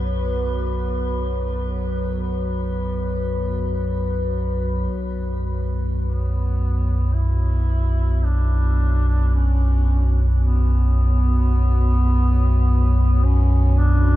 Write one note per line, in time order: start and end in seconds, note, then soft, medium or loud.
0.00 4.90 B1 medium
0.00 4.91 F#2 medium
0.00 4.92 F#3 medium
0.00 14.16 B3 medium
0.00 14.16 F#4 medium
0.00 4.94 B4 medium
0.00 14.16 C#5 medium
0.00 14.16 B5 medium
4.91 14.16 B1 medium
4.91 14.16 F#2 medium
6.02 7.15 B3 medium
7.13 8.25 E4 loud
8.24 9.38 D4 medium
9.36 10.20 C#4 medium
10.45 13.26 B3 medium
13.24 13.80 C#4 medium
13.79 14.16 D4 loud